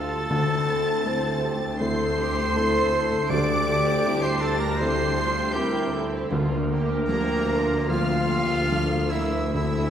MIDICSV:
0, 0, Header, 1, 13, 480
1, 0, Start_track
1, 0, Tempo, 752823
1, 194, Time_signature, 4, 2, 24, 8
1, 4516, Tempo, 823045
1, 6159, End_track
2, 0, Start_track
2, 0, Title_t, "Violin section"
2, 0, Program_c, 0, 48
2, 0, Note_on_c, 0, 93, 127
2, 1145, Note_on_c, 0, 96, 127
2, 1146, Note_off_c, 0, 93, 0
2, 2086, Note_off_c, 0, 96, 0
2, 2100, Note_on_c, 0, 98, 127
2, 2688, Note_off_c, 0, 98, 0
2, 2708, Note_on_c, 0, 96, 124
2, 2816, Note_on_c, 0, 93, 127
2, 2825, Note_off_c, 0, 96, 0
2, 2938, Note_off_c, 0, 93, 0
2, 2940, Note_on_c, 0, 94, 123
2, 3058, Note_on_c, 0, 96, 127
2, 3060, Note_off_c, 0, 94, 0
2, 3539, Note_on_c, 0, 91, 118
2, 3541, Note_off_c, 0, 96, 0
2, 3785, Note_off_c, 0, 91, 0
2, 4511, Note_on_c, 0, 82, 127
2, 4966, Note_off_c, 0, 82, 0
2, 4994, Note_on_c, 0, 89, 127
2, 5690, Note_off_c, 0, 89, 0
2, 5699, Note_on_c, 0, 88, 102
2, 5947, Note_off_c, 0, 88, 0
2, 5954, Note_on_c, 0, 88, 103
2, 6159, Note_off_c, 0, 88, 0
2, 6159, End_track
3, 0, Start_track
3, 0, Title_t, "Flute"
3, 0, Program_c, 1, 73
3, 0, Note_on_c, 1, 81, 118
3, 978, Note_off_c, 1, 81, 0
3, 1150, Note_on_c, 1, 84, 127
3, 2107, Note_on_c, 1, 86, 125
3, 2117, Note_off_c, 1, 84, 0
3, 2703, Note_off_c, 1, 86, 0
3, 2708, Note_on_c, 1, 84, 111
3, 2811, Note_on_c, 1, 81, 114
3, 2820, Note_off_c, 1, 84, 0
3, 2926, Note_on_c, 1, 82, 110
3, 2936, Note_off_c, 1, 81, 0
3, 3055, Note_on_c, 1, 84, 127
3, 3065, Note_off_c, 1, 82, 0
3, 3548, Note_on_c, 1, 79, 104
3, 3557, Note_off_c, 1, 84, 0
3, 3790, Note_off_c, 1, 79, 0
3, 4514, Note_on_c, 1, 70, 109
3, 4995, Note_on_c, 1, 77, 126
3, 5004, Note_off_c, 1, 70, 0
3, 5705, Note_on_c, 1, 76, 98
3, 5713, Note_off_c, 1, 77, 0
3, 5950, Note_off_c, 1, 76, 0
3, 5952, Note_on_c, 1, 76, 99
3, 6159, Note_off_c, 1, 76, 0
3, 6159, End_track
4, 0, Start_track
4, 0, Title_t, "Violin section"
4, 0, Program_c, 2, 48
4, 0, Note_on_c, 2, 81, 124
4, 1145, Note_off_c, 2, 81, 0
4, 1151, Note_on_c, 2, 84, 127
4, 2089, Note_off_c, 2, 84, 0
4, 2108, Note_on_c, 2, 86, 127
4, 2692, Note_off_c, 2, 86, 0
4, 2705, Note_on_c, 2, 84, 111
4, 2824, Note_off_c, 2, 84, 0
4, 2826, Note_on_c, 2, 81, 117
4, 2938, Note_on_c, 2, 82, 113
4, 2943, Note_off_c, 2, 81, 0
4, 3054, Note_on_c, 2, 84, 122
4, 3058, Note_off_c, 2, 82, 0
4, 3539, Note_off_c, 2, 84, 0
4, 3539, Note_on_c, 2, 79, 109
4, 3785, Note_off_c, 2, 79, 0
4, 4507, Note_on_c, 2, 70, 115
4, 4964, Note_off_c, 2, 70, 0
4, 4990, Note_on_c, 2, 77, 125
4, 5698, Note_on_c, 2, 76, 96
4, 5702, Note_off_c, 2, 77, 0
4, 5942, Note_off_c, 2, 76, 0
4, 5949, Note_on_c, 2, 76, 102
4, 6159, Note_off_c, 2, 76, 0
4, 6159, End_track
5, 0, Start_track
5, 0, Title_t, "Clarinet"
5, 0, Program_c, 3, 71
5, 0, Note_on_c, 3, 69, 107
5, 977, Note_off_c, 3, 69, 0
5, 1145, Note_on_c, 3, 72, 127
5, 2080, Note_off_c, 3, 72, 0
5, 2103, Note_on_c, 3, 74, 127
5, 2692, Note_on_c, 3, 72, 117
5, 2702, Note_off_c, 3, 74, 0
5, 2813, Note_on_c, 3, 69, 109
5, 2823, Note_off_c, 3, 72, 0
5, 2936, Note_on_c, 3, 70, 107
5, 2945, Note_off_c, 3, 69, 0
5, 3062, Note_on_c, 3, 72, 127
5, 3071, Note_off_c, 3, 70, 0
5, 3540, Note_on_c, 3, 67, 104
5, 3550, Note_off_c, 3, 72, 0
5, 3786, Note_off_c, 3, 67, 0
5, 4519, Note_on_c, 3, 58, 104
5, 4986, Note_on_c, 3, 65, 120
5, 4995, Note_off_c, 3, 58, 0
5, 5698, Note_on_c, 3, 64, 98
5, 5707, Note_off_c, 3, 65, 0
5, 5947, Note_off_c, 3, 64, 0
5, 5951, Note_on_c, 3, 64, 99
5, 6159, Note_off_c, 3, 64, 0
5, 6159, End_track
6, 0, Start_track
6, 0, Title_t, "French horn section"
6, 0, Program_c, 4, 60
6, 0, Note_on_c, 4, 65, 89
6, 192, Note_off_c, 4, 65, 0
6, 199, Note_on_c, 4, 69, 109
6, 667, Note_off_c, 4, 69, 0
6, 673, Note_on_c, 4, 72, 121
6, 909, Note_on_c, 4, 67, 101
6, 911, Note_off_c, 4, 72, 0
6, 1149, Note_off_c, 4, 67, 0
6, 1152, Note_on_c, 4, 69, 100
6, 1614, Note_off_c, 4, 69, 0
6, 1622, Note_on_c, 4, 69, 107
6, 1858, Note_off_c, 4, 69, 0
6, 1865, Note_on_c, 4, 69, 107
6, 2093, Note_on_c, 4, 67, 119
6, 2106, Note_off_c, 4, 69, 0
6, 3033, Note_off_c, 4, 67, 0
6, 3061, Note_on_c, 4, 69, 113
6, 3299, Note_off_c, 4, 69, 0
6, 3299, Note_on_c, 4, 67, 106
6, 3534, Note_on_c, 4, 70, 121
6, 3542, Note_off_c, 4, 67, 0
6, 3772, Note_on_c, 4, 69, 97
6, 3783, Note_off_c, 4, 70, 0
6, 4019, Note_on_c, 4, 70, 127
6, 4022, Note_off_c, 4, 69, 0
6, 4969, Note_off_c, 4, 70, 0
6, 4980, Note_on_c, 4, 65, 100
6, 5220, Note_off_c, 4, 65, 0
6, 5221, Note_on_c, 4, 67, 84
6, 5459, Note_off_c, 4, 67, 0
6, 5464, Note_on_c, 4, 69, 89
6, 5704, Note_off_c, 4, 69, 0
6, 5707, Note_on_c, 4, 70, 84
6, 5873, Note_off_c, 4, 70, 0
6, 5946, Note_on_c, 4, 69, 92
6, 6159, Note_off_c, 4, 69, 0
6, 6159, End_track
7, 0, Start_track
7, 0, Title_t, "Oboe"
7, 0, Program_c, 5, 68
7, 0, Note_on_c, 5, 69, 119
7, 973, Note_off_c, 5, 69, 0
7, 1140, Note_on_c, 5, 72, 127
7, 2104, Note_on_c, 5, 74, 127
7, 2113, Note_off_c, 5, 72, 0
7, 2693, Note_on_c, 5, 72, 113
7, 2703, Note_off_c, 5, 74, 0
7, 2810, Note_on_c, 5, 69, 108
7, 2820, Note_off_c, 5, 72, 0
7, 2928, Note_off_c, 5, 69, 0
7, 2932, Note_on_c, 5, 70, 113
7, 3037, Note_on_c, 5, 72, 127
7, 3046, Note_off_c, 5, 70, 0
7, 3525, Note_on_c, 5, 67, 112
7, 3534, Note_off_c, 5, 72, 0
7, 3778, Note_off_c, 5, 67, 0
7, 4510, Note_on_c, 5, 58, 116
7, 4991, Note_on_c, 5, 65, 127
7, 5000, Note_off_c, 5, 58, 0
7, 5696, Note_on_c, 5, 64, 105
7, 5705, Note_off_c, 5, 65, 0
7, 5942, Note_off_c, 5, 64, 0
7, 5945, Note_on_c, 5, 64, 105
7, 6159, Note_off_c, 5, 64, 0
7, 6159, End_track
8, 0, Start_track
8, 0, Title_t, "Viola section"
8, 0, Program_c, 6, 48
8, 0, Note_on_c, 6, 57, 84
8, 0, Note_on_c, 6, 65, 82
8, 171, Note_off_c, 6, 57, 0
8, 172, Note_off_c, 6, 65, 0
8, 200, Note_on_c, 6, 64, 84
8, 201, Note_on_c, 6, 60, 92
8, 652, Note_off_c, 6, 64, 0
8, 676, Note_on_c, 6, 69, 93
8, 1129, Note_off_c, 6, 60, 0
8, 1138, Note_off_c, 6, 69, 0
8, 1145, Note_on_c, 6, 69, 96
8, 1148, Note_on_c, 6, 57, 95
8, 1384, Note_off_c, 6, 69, 0
8, 1391, Note_on_c, 6, 67, 108
8, 1620, Note_off_c, 6, 57, 0
8, 1631, Note_off_c, 6, 67, 0
8, 1631, Note_on_c, 6, 69, 99
8, 1633, Note_on_c, 6, 57, 92
8, 2098, Note_off_c, 6, 69, 0
8, 2100, Note_off_c, 6, 57, 0
8, 2105, Note_on_c, 6, 62, 102
8, 2106, Note_on_c, 6, 69, 96
8, 2574, Note_off_c, 6, 69, 0
8, 2579, Note_on_c, 6, 67, 100
8, 3047, Note_off_c, 6, 67, 0
8, 3054, Note_on_c, 6, 67, 97
8, 3291, Note_off_c, 6, 67, 0
8, 3298, Note_on_c, 6, 65, 98
8, 3536, Note_on_c, 6, 60, 100
8, 3537, Note_on_c, 6, 64, 101
8, 3540, Note_off_c, 6, 62, 0
8, 3541, Note_off_c, 6, 65, 0
8, 3774, Note_off_c, 6, 64, 0
8, 3781, Note_on_c, 6, 64, 100
8, 4021, Note_off_c, 6, 64, 0
8, 4026, Note_off_c, 6, 60, 0
8, 4026, Note_on_c, 6, 58, 96
8, 4031, Note_on_c, 6, 65, 105
8, 4271, Note_off_c, 6, 65, 0
8, 4278, Note_on_c, 6, 67, 98
8, 4512, Note_off_c, 6, 67, 0
8, 4514, Note_off_c, 6, 58, 0
8, 4516, Note_on_c, 6, 62, 88
8, 4520, Note_on_c, 6, 67, 93
8, 4743, Note_on_c, 6, 65, 99
8, 4749, Note_off_c, 6, 67, 0
8, 4979, Note_off_c, 6, 65, 0
8, 4982, Note_off_c, 6, 62, 0
8, 4986, Note_on_c, 6, 60, 84
8, 4986, Note_on_c, 6, 65, 78
8, 5219, Note_off_c, 6, 60, 0
8, 5222, Note_on_c, 6, 58, 88
8, 5450, Note_off_c, 6, 58, 0
8, 5450, Note_off_c, 6, 65, 0
8, 5457, Note_on_c, 6, 58, 79
8, 5458, Note_on_c, 6, 62, 77
8, 5937, Note_off_c, 6, 58, 0
8, 5947, Note_off_c, 6, 62, 0
8, 5948, Note_on_c, 6, 69, 76
8, 5950, Note_on_c, 6, 60, 72
8, 6159, Note_off_c, 6, 60, 0
8, 6159, Note_off_c, 6, 69, 0
8, 6159, End_track
9, 0, Start_track
9, 0, Title_t, "Felt piano"
9, 0, Program_c, 7, 0
9, 0, Control_c, 7, 64, 127
9, 0, Note_on_c, 7, 57, 69
9, 0, Note_on_c, 7, 62, 65
9, 0, Note_on_c, 7, 65, 74
9, 166, Note_off_c, 7, 62, 0
9, 168, Note_off_c, 7, 57, 0
9, 169, Note_off_c, 7, 65, 0
9, 192, Note_on_c, 7, 38, 93
9, 204, Control_c, 7, 64, 0
9, 291, Control_c, 7, 64, 127
9, 659, Note_off_c, 7, 38, 0
9, 672, Note_on_c, 7, 57, 72
9, 676, Note_on_c, 7, 60, 65
9, 679, Note_on_c, 7, 64, 71
9, 1125, Note_off_c, 7, 57, 0
9, 1127, Note_off_c, 7, 60, 0
9, 1128, Note_off_c, 7, 64, 0
9, 1152, Note_on_c, 7, 57, 75
9, 1153, Note_on_c, 7, 60, 72
9, 1156, Note_on_c, 7, 64, 77
9, 1606, Note_off_c, 7, 57, 0
9, 1606, Note_off_c, 7, 60, 0
9, 1608, Note_off_c, 7, 64, 0
9, 1632, Note_on_c, 7, 57, 71
9, 1634, Note_on_c, 7, 60, 76
9, 1636, Note_on_c, 7, 64, 83
9, 2083, Note_off_c, 7, 57, 0
9, 2085, Note_off_c, 7, 60, 0
9, 2085, Note_off_c, 7, 64, 0
9, 2115, Note_on_c, 7, 38, 98
9, 2120, Control_c, 7, 64, 0
9, 2219, Control_c, 7, 64, 127
9, 2573, Note_off_c, 7, 38, 0
9, 2586, Note_on_c, 7, 60, 73
9, 2587, Note_on_c, 7, 55, 68
9, 2591, Note_on_c, 7, 64, 78
9, 3036, Note_off_c, 7, 55, 0
9, 3036, Note_off_c, 7, 60, 0
9, 3038, Note_off_c, 7, 64, 0
9, 3062, Note_on_c, 7, 55, 75
9, 3066, Note_on_c, 7, 60, 77
9, 3067, Note_on_c, 7, 64, 81
9, 3518, Note_off_c, 7, 55, 0
9, 3520, Note_off_c, 7, 60, 0
9, 3520, Note_off_c, 7, 64, 0
9, 3544, Note_on_c, 7, 55, 74
9, 3548, Note_on_c, 7, 64, 78
9, 3550, Note_on_c, 7, 60, 74
9, 4004, Note_off_c, 7, 55, 0
9, 4006, Note_off_c, 7, 64, 0
9, 4008, Note_off_c, 7, 60, 0
9, 4029, Note_on_c, 7, 38, 96
9, 4040, Control_c, 7, 64, 0
9, 4134, Control_c, 7, 64, 127
9, 4501, Note_off_c, 7, 38, 0
9, 4514, Note_on_c, 7, 53, 63
9, 4516, Note_on_c, 7, 58, 69
9, 4519, Note_on_c, 7, 65, 68
9, 4968, Note_off_c, 7, 53, 0
9, 4968, Note_off_c, 7, 58, 0
9, 4970, Note_off_c, 7, 65, 0
9, 4994, Note_on_c, 7, 53, 68
9, 4995, Note_on_c, 7, 58, 66
9, 4999, Note_on_c, 7, 65, 65
9, 5439, Note_off_c, 7, 53, 0
9, 5440, Note_off_c, 7, 58, 0
9, 5442, Note_off_c, 7, 65, 0
9, 5464, Note_on_c, 7, 53, 60
9, 5464, Note_on_c, 7, 58, 60
9, 5466, Note_on_c, 7, 62, 66
9, 5927, Note_off_c, 7, 53, 0
9, 5927, Note_off_c, 7, 58, 0
9, 5928, Note_off_c, 7, 62, 0
9, 5953, Note_on_c, 7, 38, 77
9, 5961, Control_c, 7, 64, 0
9, 6079, Control_c, 7, 64, 127
9, 6159, Note_off_c, 7, 38, 0
9, 6159, End_track
10, 0, Start_track
10, 0, Title_t, "Harp"
10, 0, Program_c, 8, 46
10, 0, Note_on_c, 8, 50, 86
10, 0, Note_on_c, 8, 57, 74
10, 0, Note_on_c, 8, 62, 69
10, 0, Note_on_c, 8, 65, 74
10, 0, Note_on_c, 8, 69, 79
10, 183, Note_off_c, 8, 50, 0
10, 190, Note_on_c, 8, 50, 98
10, 211, Note_off_c, 8, 65, 0
10, 213, Note_off_c, 8, 62, 0
10, 431, Note_on_c, 8, 60, 71
10, 667, Note_off_c, 8, 69, 0
10, 674, Note_on_c, 8, 69, 75
10, 909, Note_on_c, 8, 64, 78
10, 1139, Note_off_c, 8, 50, 0
10, 1147, Note_on_c, 8, 50, 89
10, 1381, Note_off_c, 8, 60, 0
10, 1389, Note_on_c, 8, 60, 81
10, 1616, Note_off_c, 8, 69, 0
10, 1624, Note_on_c, 8, 69, 88
10, 1722, Note_off_c, 8, 57, 0
10, 1852, Note_off_c, 8, 64, 0
10, 1860, Note_on_c, 8, 64, 77
10, 2089, Note_off_c, 8, 50, 0
10, 2096, Note_on_c, 8, 50, 105
10, 2124, Note_off_c, 8, 69, 0
10, 2332, Note_off_c, 8, 60, 0
10, 2339, Note_on_c, 8, 60, 80
10, 2578, Note_on_c, 8, 67, 83
10, 2812, Note_off_c, 8, 64, 0
10, 2819, Note_on_c, 8, 64, 83
10, 3048, Note_off_c, 8, 50, 0
10, 3055, Note_on_c, 8, 50, 89
10, 3285, Note_off_c, 8, 60, 0
10, 3293, Note_on_c, 8, 60, 85
10, 3524, Note_off_c, 8, 67, 0
10, 3532, Note_on_c, 8, 67, 94
10, 3775, Note_off_c, 8, 64, 0
10, 3782, Note_on_c, 8, 64, 84
10, 4012, Note_off_c, 8, 50, 0
10, 4019, Note_on_c, 8, 50, 106
10, 4043, Note_off_c, 8, 67, 0
10, 4045, Note_off_c, 8, 60, 0
10, 4046, Note_off_c, 8, 64, 0
10, 4265, Note_on_c, 8, 58, 72
10, 4510, Note_on_c, 8, 62, 76
10, 4740, Note_off_c, 8, 58, 0
10, 4747, Note_on_c, 8, 58, 72
10, 4981, Note_off_c, 8, 50, 0
10, 4988, Note_on_c, 8, 50, 83
10, 5229, Note_on_c, 8, 53, 70
10, 5700, Note_off_c, 8, 58, 0
10, 5707, Note_on_c, 8, 58, 67
10, 5947, Note_off_c, 8, 50, 0
10, 5954, Note_on_c, 8, 50, 76
10, 5966, Note_off_c, 8, 62, 0
10, 5970, Note_off_c, 8, 53, 0
10, 5971, Note_off_c, 8, 58, 0
10, 6159, Note_off_c, 8, 50, 0
10, 6159, End_track
11, 0, Start_track
11, 0, Title_t, "Timpani"
11, 0, Program_c, 10, 47
11, 194, Note_on_c, 10, 50, 114
11, 886, Note_off_c, 10, 50, 0
11, 2104, Note_on_c, 10, 50, 119
11, 2795, Note_off_c, 10, 50, 0
11, 4031, Note_on_c, 10, 50, 120
11, 4729, Note_off_c, 10, 50, 0
11, 5950, Note_on_c, 10, 50, 42
11, 5989, Note_off_c, 10, 50, 0
11, 6046, Note_on_c, 10, 50, 45
11, 6087, Note_off_c, 10, 50, 0
11, 6094, Note_on_c, 10, 50, 45
11, 6133, Note_off_c, 10, 50, 0
11, 6159, End_track
12, 0, Start_track
12, 0, Title_t, "Cello section"
12, 0, Program_c, 11, 48
12, 0, Note_on_c, 11, 38, 74
12, 167, Note_off_c, 11, 38, 0
12, 195, Note_on_c, 11, 38, 88
12, 4004, Note_off_c, 11, 38, 0
12, 4029, Note_on_c, 11, 38, 96
12, 6159, Note_off_c, 11, 38, 0
12, 6159, End_track
13, 0, Start_track
13, 0, Title_t, "Double bass section"
13, 0, Program_c, 12, 48
13, 0, Note_on_c, 12, 38, 76
13, 167, Note_off_c, 12, 38, 0
13, 198, Note_on_c, 12, 38, 98
13, 4005, Note_off_c, 12, 38, 0
13, 4025, Note_on_c, 12, 38, 103
13, 6159, Note_off_c, 12, 38, 0
13, 6159, End_track
0, 0, End_of_file